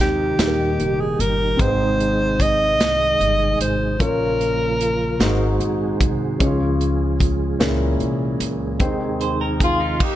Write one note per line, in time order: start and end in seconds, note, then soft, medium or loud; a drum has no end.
0.00 0.35 D#2 medium
0.00 0.38 C3 soft
0.00 0.35 D#3 medium
0.00 3.96 D#3 soft
0.00 0.36 G#3 soft
0.00 0.39 G#3 medium
0.00 0.39 C4 medium
0.00 0.38 D#4 medium
0.00 1.57 D#4 medium
0.00 1.02 G4 medium
0.00 0.35 A#4 medium
0.00 0.43 C5 medium
0.00 closed hi-hat medium
0.39 0.76 D#2 medium
0.39 1.58 A#2 soft
0.39 1.56 D#3 soft
0.39 1.58 G3 soft
0.39 1.59 A#3 soft
0.39 1.57 D#4 soft
0.39 1.58 G4 medium
0.39 1.60 G4 soft
0.39 0.46 G#4 soft
0.39 snare medium
0.39 closed hi-hat medium
0.47 1.64 A#4 medium
0.80 1.16 F1 medium
0.80 closed hi-hat soft
1.00 1.22 G#4 medium
1.19 1.56 G1 medium
1.19 1.62 A#4 medium
1.19 closed hi-hat medium
1.57 2.80 G#1 medium
1.57 2.76 G#2 soft
1.57 3.97 C3 soft
1.57 3.97 G#3 soft
1.57 3.95 C4 medium
1.57 3.96 D#4 soft
1.57 3.97 D#4 soft
1.57 3.97 G#4 medium
1.57 3.96 G#4 soft
1.57 kick loud
1.57 closed hi-hat medium
1.61 1.67 B4 soft
1.61 2.43 C5 medium
1.68 4.00 C5 medium
2.00 closed hi-hat soft
2.40 3.61 D#5 medium
2.40 kick medium
2.40 closed hi-hat medium
2.80 3.17 C2 medium
2.80 snare medium
2.80 closed hi-hat medium
3.21 3.57 G1 medium
3.21 closed hi-hat soft
3.60 3.97 G#1 medium
3.60 3.98 C5 medium
3.60 closed hi-hat medium
3.99 5.16 A#1 medium
3.99 5.16 A#2 medium
3.99 5.20 C#3 soft
3.99 5.20 F3 medium
3.99 5.20 A#3 soft
3.99 5.20 C#4 medium
3.99 5.20 F4 soft
3.99 5.19 F4 medium
3.99 5.21 A#4 soft
3.99 5.20 A#4 medium
3.99 5.57 A#4 medium
3.99 5.21 C#5 medium
3.99 kick loud
3.99 closed hi-hat medium
4.41 closed hi-hat soft
4.81 closed hi-hat medium
5.20 5.57 G#1 medium
5.20 6.37 G#2 medium
5.20 6.39 D#3 medium
5.20 9.97 G#3 medium
5.20 6.39 C4 soft
5.20 6.38 D#4 medium
5.20 6.39 F#4 soft
5.20 6.41 F#4 medium
5.20 6.39 G#4 medium
5.20 6.41 C5 medium
5.20 snare medium
5.20 closed hi-hat medium
5.60 5.97 A#1 medium
5.60 closed hi-hat soft
6.00 6.37 C2 medium
6.00 kick medium
6.00 closed hi-hat medium
6.39 7.56 C#2 medium
6.39 7.57 C#3 medium
6.39 7.60 C#3 medium
6.39 7.60 F3 soft
6.39 7.58 C#4 medium
6.39 6.47 D#4 soft
6.39 7.60 F4 soft
6.39 7.59 G#4 medium
6.39 9.98 G#4 medium
6.39 7.61 C#5 medium
6.39 kick loud
6.39 closed hi-hat medium
6.46 7.64 F4 medium
6.81 closed hi-hat soft
7.20 kick medium
7.20 closed hi-hat medium
7.59 7.97 C#2 medium
7.59 8.77 A#2 medium
7.59 8.80 E3 medium
7.59 8.80 A#3 soft
7.59 8.80 C#4 medium
7.59 8.80 C#4 soft
7.59 7.67 D#4 soft
7.59 8.79 G#4 medium
7.59 8.81 A#4 medium
7.59 snare medium
7.59 closed hi-hat medium
7.66 8.84 E4 medium
8.00 8.38 C2 medium
8.00 closed hi-hat soft
8.40 8.77 C#2 medium
8.40 closed hi-hat medium
8.80 9.97 D#2 medium
8.80 10.00 C3 medium
8.80 9.97 D#3 medium
8.80 10.00 D#3 soft
8.80 10.00 C4 medium
8.80 10.01 D#4 medium
8.80 10.00 D#4 soft
8.80 10.01 G#4 medium
8.80 10.01 C5 medium
8.80 kick loud
8.80 closed hi-hat medium
9.21 9.40 C5 medium
9.21 closed hi-hat soft
9.41 9.61 A#4 medium
9.60 9.99 F4 medium
9.60 9.80 G#4 medium
9.60 kick medium
9.60 closed hi-hat medium
9.80 10.16 D#4 medium
10.00 10.16 A#3 soft
10.00 10.16 D#4 medium
10.00 10.16 G4 medium
10.00 kick medium
10.00 crash medium